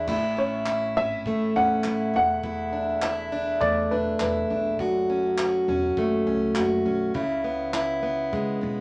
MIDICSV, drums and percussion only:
0, 0, Header, 1, 2, 480
1, 0, Start_track
1, 0, Key_signature, 3, "major"
1, 0, Tempo, 588813
1, 66, Time_signature, 4, 2, 24, 8
1, 7179, End_track
2, 0, Start_track
2, 0, Title_t, "Drums"
2, 60, Note_on_c, 9, 49, 75
2, 63, Note_on_c, 9, 36, 88
2, 141, Note_off_c, 9, 49, 0
2, 145, Note_off_c, 9, 36, 0
2, 538, Note_on_c, 9, 39, 84
2, 620, Note_off_c, 9, 39, 0
2, 1025, Note_on_c, 9, 36, 91
2, 1107, Note_off_c, 9, 36, 0
2, 1498, Note_on_c, 9, 39, 96
2, 1579, Note_off_c, 9, 39, 0
2, 1985, Note_on_c, 9, 36, 92
2, 2067, Note_off_c, 9, 36, 0
2, 2462, Note_on_c, 9, 39, 85
2, 2543, Note_off_c, 9, 39, 0
2, 2947, Note_on_c, 9, 36, 99
2, 3028, Note_off_c, 9, 36, 0
2, 3422, Note_on_c, 9, 39, 93
2, 3504, Note_off_c, 9, 39, 0
2, 3907, Note_on_c, 9, 36, 95
2, 3988, Note_off_c, 9, 36, 0
2, 4386, Note_on_c, 9, 39, 92
2, 4468, Note_off_c, 9, 39, 0
2, 4868, Note_on_c, 9, 36, 98
2, 4950, Note_off_c, 9, 36, 0
2, 5342, Note_on_c, 9, 39, 88
2, 5423, Note_off_c, 9, 39, 0
2, 5828, Note_on_c, 9, 36, 95
2, 5910, Note_off_c, 9, 36, 0
2, 6308, Note_on_c, 9, 39, 93
2, 6389, Note_off_c, 9, 39, 0
2, 6790, Note_on_c, 9, 36, 93
2, 6872, Note_off_c, 9, 36, 0
2, 7179, End_track
0, 0, End_of_file